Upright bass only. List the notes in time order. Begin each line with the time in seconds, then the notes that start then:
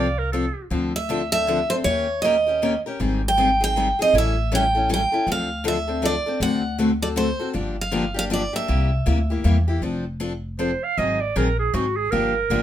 Already playing: C2
0.71 D2
1.85 D#2
3.00 G#1
4.13 A1
5.27 D2
6.40 D2
7.55 G1
8.69 C2
9.07 D2
9.44 E2
9.82 F1
10.98 G#1
11.36 A#1
11.74 G#1
12.13 G1
12.50 A1